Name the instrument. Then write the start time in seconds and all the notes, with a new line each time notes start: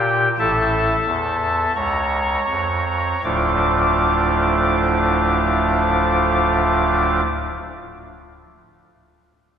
pipe organ
Already playing: A#2 G4 G5
0.39 A1 A2 A4 E5 A5
1.06 E2
1.76 C#2 C#5 A#5 C#6
2.49 F2
3.24 D1 D2 A2 F3 A3 D4 F4 D6